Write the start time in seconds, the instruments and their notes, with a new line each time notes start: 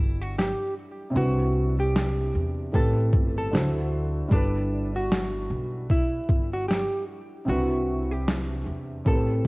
Already playing: upright bass G1, felt piano G3 D4 E4 A4 B4, hollow-body jazz guitar E4
0.22 hollow-body jazz guitar F#4
0.39 hollow-body jazz guitar G4, snare
1.10 felt piano C3 C4 D4
1.15 upright bass C2, felt piano E4 B4, hollow-body jazz guitar F#4
1.80 hollow-body jazz guitar G4
1.96 snare
2.35 upright bass E2
2.72 upright bass A1, felt piano A2 A3 C4 G4 B4, hollow-body jazz guitar A4, kick
3.13 upright bass G1, kick
3.38 hollow-body jazz guitar A4
3.51 upright bass D2, felt piano D3 D4 E4 F#4 C5, snare
4.28 upright bass G1, felt piano G3 D4 E4, kick
4.33 hollow-body jazz guitar D4, felt piano A4 B4
4.96 hollow-body jazz guitar F#4
5.12 snare
5.50 upright bass B1
5.90 hollow-body jazz guitar E4, kick
6.29 upright bass G1, kick
6.53 hollow-body jazz guitar F#4
6.68 hollow-body jazz guitar G4, snare
7.45 upright bass C2, felt piano C3 C4 D4
7.49 felt piano E4 B4, hollow-body jazz guitar F#4
8.11 hollow-body jazz guitar G4
8.28 snare
8.66 upright bass E2
9.05 upright bass A1, felt piano A2 A3 C4 G4 A#4, hollow-body jazz guitar A4, kick
9.14 felt piano B4